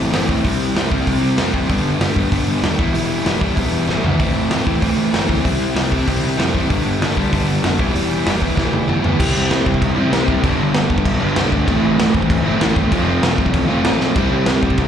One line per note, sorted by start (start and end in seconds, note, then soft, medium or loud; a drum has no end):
0.00 0.10 A2 medium
0.00 0.10 E3 loud
0.00 0.11 A3 medium
0.00 0.12 C4 loud
0.00 0.12 E4 loud
0.11 0.23 G1 medium
0.11 0.29 A2 medium
0.11 0.28 E3 medium
0.11 0.28 A3 medium
0.11 0.27 C4 medium
0.11 0.27 E4 medium
0.11 snare loud
0.11 open hi-hat medium
0.28 0.39 A1 medium
0.28 0.44 A2 medium
0.28 0.43 E3 medium
0.28 0.43 A3 medium
0.28 0.43 C4 medium
0.28 0.43 E4 medium
0.28 kick medium
0.44 0.65 C2 medium
0.44 0.73 C3 medium
0.44 0.75 G3 medium
0.44 0.75 C4 medium
0.44 0.75 E4 loud
0.44 kick medium
0.44 open hi-hat medium
0.75 0.95 C2 medium
0.75 0.91 C3 medium
0.75 0.91 G3 medium
0.75 0.90 C4 medium
0.75 0.89 E4 medium
0.75 snare loud
0.75 open hi-hat soft
0.90 1.05 C3 medium
0.90 1.06 G3 medium
0.90 1.06 C4 medium
0.90 1.06 E4 medium
0.90 kick medium
1.06 1.17 C2 medium
1.06 1.35 C3 medium
1.06 1.36 G3 medium
1.06 1.36 C4 loud
1.06 1.37 E4 loud
1.06 kick medium
1.06 open hi-hat medium
1.22 1.32 C2 medium
1.36 1.48 F2 medium
1.36 1.53 C3 medium
1.36 1.54 G3 medium
1.36 1.52 C4 medium
1.36 1.52 E4 medium
1.36 snare loud
1.36 open hi-hat soft
1.53 1.64 A1 medium
1.53 1.68 C3 medium
1.53 1.69 G3 medium
1.53 1.68 C4 medium
1.53 1.68 E4 medium
1.53 kick medium
1.69 1.79 G1 loud
1.69 1.98 G2 medium
1.69 1.99 D3 loud
1.69 2.00 G3 loud
1.69 2.00 B3 loud
1.69 2.00 D4 loud
1.69 kick loud
1.69 open hi-hat medium
1.85 1.95 G1 medium
1.99 2.10 G1 medium
1.99 2.15 G2 medium
1.99 2.15 D3 medium
1.99 2.15 G3 medium
1.99 2.15 B3 medium
1.99 2.13 D4 medium
1.99 snare loud
1.99 open hi-hat medium
2.15 2.26 G1 medium
2.15 2.30 G2 medium
2.15 2.30 D3 medium
2.15 2.31 G3 medium
2.15 2.31 B3 medium
2.15 2.31 D4 loud
2.15 kick medium
2.31 2.42 G1 medium
2.31 2.61 G2 loud
2.31 2.61 D3 medium
2.31 2.62 G3 loud
2.31 2.62 B3 loud
2.31 2.62 D4 loud
2.31 kick medium
2.31 open hi-hat medium
2.46 2.57 G1 medium
2.62 2.73 D#2 medium
2.62 2.77 G2 medium
2.62 2.77 D3 medium
2.62 2.77 G3 medium
2.62 2.78 B3 medium
2.62 2.78 D4 medium
2.62 snare loud
2.62 open hi-hat medium
2.78 2.89 E1 medium
2.78 2.94 E3 medium
2.78 2.92 G3 medium
2.78 2.92 B3 medium
2.78 2.93 E4 loud
2.78 kick medium
2.93 3.14 E1 medium
2.93 3.25 E3 medium
2.93 3.24 G3 medium
2.93 3.23 B3 loud
2.93 3.24 E4 loud
2.93 open hi-hat medium
3.24 3.46 E1 medium
3.24 3.40 E3 medium
3.24 3.40 G3 medium
3.24 3.40 B3 medium
3.24 3.41 E4 medium
3.24 snare loud
3.24 open hi-hat medium
3.40 3.57 E3 medium
3.40 3.55 G3 medium
3.40 3.55 B3 medium
3.40 3.55 E4 medium
3.40 kick medium
3.56 3.67 E1 medium
3.56 3.88 E3 medium
3.56 3.87 G3 medium
3.56 3.86 B3 loud
3.56 3.87 E4 loud
3.56 kick medium
3.56 open hi-hat medium
3.72 3.82 E1 medium
3.87 3.98 A1 medium
3.87 4.02 E3 medium
3.87 4.02 G3 medium
3.87 4.03 B3 medium
3.87 4.04 E4 medium
3.87 snare medium
4.03 4.20 D2 medium
4.03 4.19 E3 medium
4.03 4.18 G3 medium
4.03 4.18 B3 medium
4.03 4.20 E4 medium
4.03 floor tom medium
4.19 4.30 A1 medium
4.19 4.49 A2 loud
4.19 4.50 E3 loud
4.19 4.50 A3 medium
4.19 4.51 C4 loud
4.19 4.52 E4 loud
4.19 kick loud
4.19 open hi-hat medium
4.35 4.45 A1 medium
4.50 4.60 A1 medium
4.50 4.67 A2 medium
4.50 4.67 E3 medium
4.50 4.66 A3 medium
4.50 4.66 C4 medium
4.50 4.66 E4 medium
4.50 snare loud
4.50 open hi-hat soft
4.66 4.77 A1 medium
4.66 4.81 A2 medium
4.66 4.81 E3 medium
4.66 4.81 A3 medium
4.66 4.82 C4 medium
4.66 4.83 E4 medium
4.66 kick medium
4.82 4.92 A1 loud
4.82 5.11 A2 loud
4.82 5.12 E3 loud
4.82 5.12 A3 loud
4.82 5.13 C4 loud
4.82 5.13 E4 loud
4.82 kick medium
4.82 open hi-hat medium
4.97 5.08 A1 medium
5.13 5.23 G1 medium
5.13 5.28 A2 medium
5.13 5.27 E3 medium
5.13 5.27 A3 medium
5.13 5.27 C4 medium
5.13 5.26 E4 medium
5.13 snare loud
5.13 open hi-hat medium
5.28 5.39 D2 medium
5.28 5.44 A2 medium
5.28 5.43 E3 medium
5.28 5.43 A3 medium
5.28 5.43 C4 medium
5.28 5.43 E4 loud
5.28 kick medium
5.43 5.65 C2 loud
5.43 5.74 C3 medium
5.43 5.75 G3 medium
5.43 5.75 C4 loud
5.43 5.76 E4 loud
5.43 kick medium
5.43 open hi-hat medium
5.75 5.96 C2 loud
5.75 5.91 C3 medium
5.75 5.91 G3 medium
5.75 5.90 C4 medium
5.75 5.90 E4 medium
5.75 snare loud
5.75 open hi-hat medium
5.91 6.06 C3 medium
5.91 6.07 G3 medium
5.91 6.07 C4 medium
5.91 6.07 E4 medium
5.91 kick medium
6.07 6.18 C2 loud
6.07 6.36 C3 medium
6.07 6.38 G3 medium
6.07 6.37 C4 loud
6.07 6.38 E4 loud
6.07 kick medium
6.07 open hi-hat medium
6.22 6.33 C2 medium
6.38 6.48 F2 medium
6.38 6.54 C3 medium
6.38 6.54 G3 medium
6.38 6.53 C4 medium
6.38 6.53 E4 medium
6.38 snare loud
6.38 open hi-hat medium
6.54 6.64 A1 medium
6.54 6.69 C3 medium
6.54 6.70 G3 medium
6.54 6.69 C4 medium
6.54 6.69 E4 medium
6.54 kick medium
6.69 6.80 G1 loud
6.69 6.99 G2 loud
6.69 7.00 D3 loud
6.69 7.01 G3 medium
6.69 7.02 B3 loud
6.69 7.01 D4 loud
6.69 kick loud
6.69 open hi-hat medium
6.85 6.95 G1 loud
7.00 7.10 G1 loud
7.00 7.17 G2 medium
7.00 7.17 D3 medium
7.00 7.17 G3 medium
7.00 7.17 B3 medium
7.00 7.15 D4 medium
7.00 snare loud
7.00 open hi-hat medium
7.16 7.27 G1 medium
7.16 7.29 G2 medium
7.16 7.30 D3 medium
7.16 7.31 G3 medium
7.16 7.31 B3 medium
7.16 7.31 D4 medium
7.16 kick medium
7.31 7.43 G1 loud
7.31 7.61 G2 medium
7.31 7.62 D3 loud
7.31 7.63 G3 medium
7.31 7.63 B3 loud
7.31 7.63 D4 loud
7.31 kick loud
7.31 open hi-hat medium
7.47 7.57 G1 medium
7.62 7.73 F1 medium
7.62 7.77 G2 medium
7.62 7.77 D3 medium
7.62 7.78 G3 medium
7.62 7.77 B3 medium
7.62 7.78 D4 loud
7.62 snare loud
7.62 open hi-hat medium
7.78 7.89 E1 medium
7.78 7.93 E3 medium
7.78 7.93 G3 medium
7.78 7.92 B3 loud
7.78 7.92 E4 loud
7.78 kick medium
7.93 8.15 E1 medium
7.93 8.25 E3 medium
7.93 8.25 G3 medium
7.93 8.24 B3 loud
7.93 8.24 E4 loud
7.93 open hi-hat medium
8.25 8.46 E1 loud
8.25 8.39 E3 medium
8.25 8.40 G3 medium
8.25 8.40 B3 medium
8.25 8.41 E4 medium
8.25 snare loud
8.25 open hi-hat medium
8.40 8.56 E3 medium
8.40 8.56 G3 medium
8.40 8.55 B3 medium
8.40 8.55 E4 medium
8.40 kick medium
8.56 8.67 E1 medium
8.56 8.87 E3 medium
8.56 8.87 G3 medium
8.56 8.86 B3 loud
8.56 8.86 E4 loud
8.56 kick medium
8.56 snare medium
8.73 8.83 E1 medium
8.73 high tom medium
8.87 8.98 A1 medium
8.87 9.02 E3 medium
8.87 9.02 G3 medium
8.87 9.02 B3 medium
8.87 9.03 E4 loud
8.87 mid tom medium
9.03 9.14 D2 medium
9.03 9.18 E3 medium
9.03 9.18 G3 medium
9.03 9.18 B3 medium
9.03 9.18 E4 medium
9.03 floor tom medium
9.18 9.31 C2 loud
9.18 9.95 C3 loud
9.18 9.96 G3 medium
9.18 9.96 C4 loud
9.18 9.95 E4 loud
9.18 kick loud
9.18 crash loud
9.18 crash medium
9.35 9.47 C2 loud
9.50 9.62 C2 loud
9.50 snare loud
9.50 crash medium
9.66 9.78 C2 medium
9.66 kick medium
9.74 kick medium
9.82 9.94 C2 medium
9.82 kick medium
9.82 crash medium
9.96 10.08 A1 medium
9.96 10.10 C3 medium
9.96 10.11 G3 medium
9.96 10.12 C4 medium
9.96 10.11 E4 medium
10.11 10.24 C2 medium
10.11 10.42 C3 medium
10.11 10.43 G3 medium
10.11 10.43 C4 medium
10.11 10.43 E4 medium
10.11 snare loud
10.11 crash medium
10.28 10.40 C2 medium
10.28 kick medium
10.42 10.56 G1 loud
10.42 11.19 G2 medium
10.42 11.20 D3 loud
10.42 11.19 G3 loud
10.42 11.19 B3 loud
10.42 11.18 D4 loud
10.42 kick loud
10.42 crash medium
10.58 10.70 G1 loud
10.74 10.86 G1 loud
10.74 snare loud
10.74 crash medium
10.90 11.02 D2 medium
10.90 kick medium
10.98 kick medium
11.05 11.17 B1 loud
11.05 kick loud
11.05 crash medium
11.19 11.33 G1 medium
11.19 11.34 G2 medium
11.19 11.35 D3 medium
11.19 11.35 G3 medium
11.19 11.35 B3 medium
11.19 11.35 D4 medium
11.35 11.48 C2 loud
11.35 11.66 G2 medium
11.35 11.66 D3 medium
11.35 11.67 G3 medium
11.35 11.67 B3 medium
11.35 11.67 D4 loud
11.35 snare loud
11.35 crash medium
11.52 11.64 D2 loud
11.52 kick medium
11.66 11.79 A1 loud
11.66 12.44 A2 loud
11.66 12.44 E3 loud
11.66 12.45 A3 loud
11.66 12.45 C4 loud
11.66 12.43 E4 loud
11.66 kick loud
11.66 crash medium
11.82 11.94 A1 loud
11.98 12.10 A1 loud
11.98 snare loud
11.98 crash medium
12.14 12.26 A1 medium
12.14 kick medium
12.22 kick medium
12.30 12.42 A1 loud
12.30 kick loud
12.30 crash medium
12.44 12.57 G1 medium
12.44 12.58 A2 medium
12.44 12.59 E3 medium
12.44 12.60 A3 medium
12.44 12.62 C4 medium
12.44 12.59 E4 medium
12.59 12.72 A1 medium
12.59 12.90 A2 medium
12.59 12.90 E3 medium
12.59 12.91 A3 medium
12.59 12.92 C4 loud
12.59 12.92 E4 medium
12.59 snare loud
12.59 crash medium
12.76 12.88 G1 medium
12.76 kick medium
12.91 13.04 F1 loud
12.91 13.68 F3 loud
12.91 13.68 A3 loud
12.91 13.68 C4 loud
12.91 13.66 F4 loud
12.91 kick medium
12.91 crash medium
13.07 13.19 F1 loud
13.22 13.34 F1 medium
13.22 snare loud
13.22 crash medium
13.38 13.50 C2 medium
13.38 kick medium
13.46 kick medium
13.54 13.66 A1 loud
13.54 kick loud
13.54 crash medium
13.68 13.81 F1 medium
13.68 13.82 F3 medium
13.68 13.84 A3 medium
13.68 13.84 C4 medium
13.68 13.83 F4 medium
13.83 13.97 A1 medium
13.83 14.14 F3 medium
13.83 14.15 A3 medium
13.83 14.15 C4 medium
13.83 14.16 F4 medium
13.83 snare loud
13.83 crash medium
14.00 14.12 B1 medium
14.00 snare medium
14.15 14.28 C2 loud
14.15 14.88 C3 medium
14.15 14.88 G3 loud
14.15 14.88 C4 medium
14.15 14.88 E4 loud
14.15 kick loud
14.15 crash medium
14.32 14.44 C2 loud
14.46 14.59 C2 loud
14.46 snare loud
14.46 crash medium
14.63 14.74 C2 medium
14.63 kick medium
14.70 kick medium
14.78 14.88 C2 loud
14.78 kick loud
14.78 crash medium